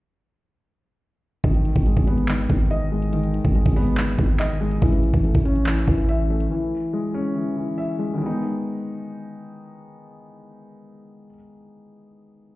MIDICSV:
0, 0, Header, 1, 4, 480
1, 0, Start_track
1, 0, Tempo, 422535
1, 1635, Time_signature, 4, 2, 24, 8
1, 14266, End_track
2, 0, Start_track
2, 0, Title_t, "Grand piano"
2, 0, Program_c, 0, 0
2, 1635, Note_on_c, 0, 51, 89
2, 1881, Control_c, 0, 64, 127
2, 2115, Note_on_c, 0, 56, 75
2, 2354, Note_on_c, 0, 59, 96
2, 2578, Note_off_c, 0, 51, 0
2, 2595, Note_on_c, 0, 51, 70
2, 2818, Note_off_c, 0, 51, 0
2, 2835, Note_on_c, 0, 51, 74
2, 3074, Note_on_c, 0, 75, 98
2, 3298, Note_off_c, 0, 56, 0
2, 3315, Note_on_c, 0, 56, 77
2, 3538, Note_off_c, 0, 51, 0
2, 3555, Note_off_c, 0, 59, 0
2, 3555, Note_on_c, 0, 51, 92
2, 4018, Note_off_c, 0, 56, 0
2, 4035, Note_on_c, 0, 56, 83
2, 4275, Note_off_c, 0, 75, 0
2, 4275, Note_on_c, 0, 59, 100
2, 4498, Note_off_c, 0, 51, 0
2, 4515, Note_on_c, 0, 51, 67
2, 4738, Note_off_c, 0, 51, 0
2, 4755, Note_on_c, 0, 51, 75
2, 4994, Note_on_c, 0, 75, 98
2, 5218, Note_off_c, 0, 56, 0
2, 5235, Note_on_c, 0, 56, 84
2, 5475, Note_off_c, 0, 51, 0
2, 5475, Note_off_c, 0, 56, 0
2, 5475, Note_off_c, 0, 59, 0
2, 5475, Note_off_c, 0, 75, 0
2, 5475, Note_on_c, 0, 52, 98
2, 5491, Control_c, 0, 64, 0
2, 5701, Control_c, 0, 64, 127
2, 5954, Note_on_c, 0, 57, 80
2, 6195, Note_on_c, 0, 61, 92
2, 6417, Note_off_c, 0, 52, 0
2, 6434, Note_on_c, 0, 52, 74
2, 6658, Note_off_c, 0, 52, 0
2, 6675, Note_on_c, 0, 52, 79
2, 6915, Note_on_c, 0, 76, 104
2, 7137, Note_off_c, 0, 57, 0
2, 7154, Note_on_c, 0, 57, 78
2, 7378, Note_off_c, 0, 52, 0
2, 7395, Note_off_c, 0, 57, 0
2, 7395, Note_off_c, 0, 61, 0
2, 7395, Note_off_c, 0, 76, 0
2, 7395, Note_on_c, 0, 52, 91
2, 7409, Control_c, 0, 64, 0
2, 7633, Control_c, 0, 64, 127
2, 7875, Note_on_c, 0, 56, 79
2, 8115, Note_on_c, 0, 61, 97
2, 8338, Note_off_c, 0, 52, 0
2, 8355, Note_on_c, 0, 52, 71
2, 8577, Note_off_c, 0, 52, 0
2, 8594, Note_on_c, 0, 52, 69
2, 8835, Note_on_c, 0, 76, 93
2, 9058, Note_off_c, 0, 56, 0
2, 9075, Note_on_c, 0, 56, 74
2, 9247, Note_on_c, 0, 51, 86
2, 9275, Note_off_c, 0, 56, 0
2, 9292, Note_on_c, 0, 56, 79
2, 9315, Note_off_c, 0, 52, 0
2, 9315, Note_off_c, 0, 61, 0
2, 9315, Note_off_c, 0, 76, 0
2, 9332, Control_c, 0, 64, 0
2, 9338, Note_on_c, 0, 59, 80
2, 9383, Note_on_c, 0, 63, 97
2, 9530, Control_c, 0, 64, 127
2, 12769, Note_off_c, 0, 51, 0
2, 12814, Note_off_c, 0, 56, 0
2, 12860, Note_off_c, 0, 59, 0
2, 12905, Note_off_c, 0, 63, 0
2, 14266, End_track
3, 0, Start_track
3, 0, Title_t, "808-style bass"
3, 0, Program_c, 1, 38
3, 1635, Note_on_c, 1, 32, 117
3, 1981, Note_off_c, 1, 32, 0
3, 1996, Note_on_c, 1, 32, 101
3, 2226, Note_off_c, 1, 32, 0
3, 2235, Note_on_c, 1, 32, 103
3, 2811, Note_off_c, 1, 32, 0
3, 2835, Note_on_c, 1, 32, 104
3, 3872, Note_off_c, 1, 32, 0
3, 3916, Note_on_c, 1, 32, 102
3, 4146, Note_off_c, 1, 32, 0
3, 4154, Note_on_c, 1, 32, 104
3, 4731, Note_off_c, 1, 32, 0
3, 4755, Note_on_c, 1, 32, 107
3, 5446, Note_off_c, 1, 32, 0
3, 5475, Note_on_c, 1, 33, 118
3, 5821, Note_off_c, 1, 33, 0
3, 5835, Note_on_c, 1, 33, 100
3, 6066, Note_off_c, 1, 33, 0
3, 6074, Note_on_c, 1, 33, 99
3, 6651, Note_off_c, 1, 33, 0
3, 6675, Note_on_c, 1, 33, 108
3, 7366, Note_off_c, 1, 33, 0
3, 14266, End_track
4, 0, Start_track
4, 0, Title_t, "Drums"
4, 1635, Note_on_c, 9, 36, 112
4, 1635, Note_on_c, 9, 42, 98
4, 1748, Note_off_c, 9, 42, 0
4, 1749, Note_off_c, 9, 36, 0
4, 1754, Note_on_c, 9, 42, 69
4, 1867, Note_off_c, 9, 42, 0
4, 1876, Note_on_c, 9, 42, 75
4, 1990, Note_off_c, 9, 42, 0
4, 1994, Note_on_c, 9, 42, 61
4, 1996, Note_on_c, 9, 36, 91
4, 2108, Note_off_c, 9, 42, 0
4, 2109, Note_off_c, 9, 36, 0
4, 2113, Note_on_c, 9, 42, 66
4, 2227, Note_off_c, 9, 42, 0
4, 2235, Note_on_c, 9, 36, 91
4, 2348, Note_off_c, 9, 36, 0
4, 2356, Note_on_c, 9, 42, 85
4, 2470, Note_off_c, 9, 42, 0
4, 2474, Note_on_c, 9, 42, 49
4, 2588, Note_off_c, 9, 42, 0
4, 2594, Note_on_c, 9, 42, 88
4, 2595, Note_on_c, 9, 39, 118
4, 2708, Note_off_c, 9, 42, 0
4, 2709, Note_off_c, 9, 39, 0
4, 2716, Note_on_c, 9, 42, 56
4, 2830, Note_off_c, 9, 42, 0
4, 2835, Note_on_c, 9, 36, 96
4, 2835, Note_on_c, 9, 42, 90
4, 2948, Note_off_c, 9, 42, 0
4, 2949, Note_off_c, 9, 36, 0
4, 2955, Note_on_c, 9, 42, 61
4, 3068, Note_off_c, 9, 42, 0
4, 3077, Note_on_c, 9, 42, 77
4, 3190, Note_off_c, 9, 42, 0
4, 3434, Note_on_c, 9, 42, 67
4, 3548, Note_off_c, 9, 42, 0
4, 3554, Note_on_c, 9, 42, 99
4, 3668, Note_off_c, 9, 42, 0
4, 3673, Note_on_c, 9, 42, 69
4, 3787, Note_off_c, 9, 42, 0
4, 3796, Note_on_c, 9, 42, 77
4, 3909, Note_off_c, 9, 42, 0
4, 3914, Note_on_c, 9, 42, 58
4, 3915, Note_on_c, 9, 36, 93
4, 4028, Note_off_c, 9, 42, 0
4, 4029, Note_off_c, 9, 36, 0
4, 4032, Note_on_c, 9, 42, 68
4, 4146, Note_off_c, 9, 42, 0
4, 4154, Note_on_c, 9, 36, 94
4, 4268, Note_off_c, 9, 36, 0
4, 4276, Note_on_c, 9, 46, 81
4, 4389, Note_off_c, 9, 46, 0
4, 4394, Note_on_c, 9, 42, 47
4, 4508, Note_off_c, 9, 42, 0
4, 4514, Note_on_c, 9, 42, 86
4, 4515, Note_on_c, 9, 39, 121
4, 4628, Note_off_c, 9, 39, 0
4, 4628, Note_off_c, 9, 42, 0
4, 4636, Note_on_c, 9, 42, 57
4, 4750, Note_off_c, 9, 42, 0
4, 4754, Note_on_c, 9, 42, 88
4, 4755, Note_on_c, 9, 36, 99
4, 4868, Note_off_c, 9, 42, 0
4, 4869, Note_off_c, 9, 36, 0
4, 4873, Note_on_c, 9, 42, 61
4, 4987, Note_off_c, 9, 42, 0
4, 4995, Note_on_c, 9, 39, 97
4, 4996, Note_on_c, 9, 42, 80
4, 5108, Note_off_c, 9, 39, 0
4, 5110, Note_off_c, 9, 42, 0
4, 5354, Note_on_c, 9, 42, 66
4, 5468, Note_off_c, 9, 42, 0
4, 5474, Note_on_c, 9, 42, 95
4, 5475, Note_on_c, 9, 36, 113
4, 5588, Note_off_c, 9, 42, 0
4, 5589, Note_off_c, 9, 36, 0
4, 5594, Note_on_c, 9, 42, 69
4, 5707, Note_off_c, 9, 42, 0
4, 5716, Note_on_c, 9, 42, 75
4, 5830, Note_off_c, 9, 42, 0
4, 5835, Note_on_c, 9, 42, 59
4, 5836, Note_on_c, 9, 36, 90
4, 5948, Note_off_c, 9, 42, 0
4, 5949, Note_off_c, 9, 36, 0
4, 5953, Note_on_c, 9, 42, 69
4, 6066, Note_off_c, 9, 42, 0
4, 6075, Note_on_c, 9, 36, 93
4, 6188, Note_off_c, 9, 36, 0
4, 6196, Note_on_c, 9, 42, 80
4, 6309, Note_off_c, 9, 42, 0
4, 6314, Note_on_c, 9, 42, 49
4, 6427, Note_off_c, 9, 42, 0
4, 6434, Note_on_c, 9, 42, 90
4, 6435, Note_on_c, 9, 39, 120
4, 6548, Note_off_c, 9, 39, 0
4, 6548, Note_off_c, 9, 42, 0
4, 6556, Note_on_c, 9, 42, 58
4, 6670, Note_off_c, 9, 42, 0
4, 6675, Note_on_c, 9, 36, 94
4, 6675, Note_on_c, 9, 42, 85
4, 6788, Note_off_c, 9, 42, 0
4, 6789, Note_off_c, 9, 36, 0
4, 6794, Note_on_c, 9, 42, 60
4, 6908, Note_off_c, 9, 42, 0
4, 6917, Note_on_c, 9, 42, 82
4, 7031, Note_off_c, 9, 42, 0
4, 7275, Note_on_c, 9, 42, 69
4, 7389, Note_off_c, 9, 42, 0
4, 14266, End_track
0, 0, End_of_file